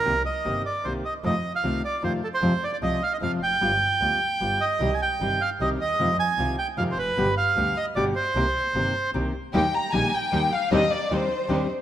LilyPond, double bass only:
\new Staff \with { instrumentName = "Double bass" } { \clef bass \time 3/4 \key c \minor \tempo 4 = 152 c,8 r8 g,,8 r8 c,8 r8 | f,8 r8 c,8 r8 f,8 r8 | f,8 r8 c,8 r8 f,8 f,,8 | g,,8 r8 d,8 r8 g,,8 r8 |
c,8 r8 g,,8 r8 c,8 ees,8 | f,8 r8 c,8 r8 f,8 f,,8 | g,,8 r8 d,8 r8 g,,8 r8 | c,8 r8 g,,8 r8 c,8 r8 |
\key ees \major ees,8 r8 bes,,8 r8 ees,8 r8 | ees,8 r8 ees,8 r8 ees,8 r8 | }